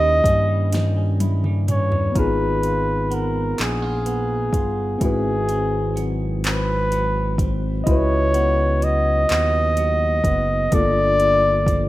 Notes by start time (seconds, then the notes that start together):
Already playing: D#2 D#3 A#3 C#4 E4 G4 D#5
0.00 G3
0.24 G2 C#4, kick, closed hi-hat
0.48 G3
0.73 D#3, snare, closed hi-hat
0.97 C#4
1.20 E4, closed hi-hat, high tom
1.44 G3, mid tom
1.68 C#4 C#5, closed hi-hat, mid tom
1.92 G3, floor tom
2.12 G#3 B3 D#4 A#4, kick, closed hi-hat
2.16 G#1 F4 G#4 B4
2.63 F4, closed hi-hat
3.10 B3 A#4, closed hi-hat
3.58 A#1 D#4, clap, closed hi-hat
3.62 G#4
3.82 F4
4.06 B3, closed hi-hat
4.53 G1 F4, kick, closed hi-hat
4.98 G#1 G#2 C4 E4, kick, closed hi-hat
5.03 F#4 G#4 B4
5.48 C4, closed hi-hat
5.96 F#3, closed hi-hat
6.44 C4 B4, clap, closed hi-hat
6.92 F#3, closed hi-hat
7.38 C4, kick, closed hi-hat
7.84 C#2 C#3 E4 D#5, kick, closed hi-hat
7.88 F#4 B4 C#5
8.34 B3, closed hi-hat
8.81 F#3 D#5, closed hi-hat
9.29 D#2 B3, clap, closed hi-hat
9.77 F#3, closed hi-hat
10.24 F#1 B3, kick, closed hi-hat
10.71 G1 G2 A3 D4 F4 A4 D5, kick, closed hi-hat
10.77 A#3
11.20 A#3, closed hi-hat
11.67 F3, kick, closed hi-hat